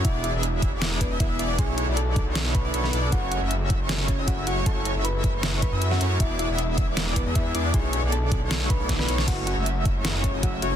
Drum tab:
CC |----------------|----------------|----------------|----------------|
HH |x-x-x-x-x-x-x-x-|x-x-x-x-x-x-x-x-|x-x-x-x-x-x-x-x-|x-x-x-x-x-x-x-x-|
SD |--------o-------|--------o----o--|--------o-------|--------o----o--|
BD |o-----o---o-o---|o-----o---o-----|o-----o---o-o---|o-----o---o-----|

CC |----------------|----------------|x---------------|
HH |x-x-x-x-x-x-x-x-|x-x-x-x-x-x-x-x-|x-x-x-x-x-x-x-x-|
SD |--------o-------|--------o---oo-o|--------o-------|
BD |o-----o---o-o---|o-----o---o-o---|o-----o---o-o---|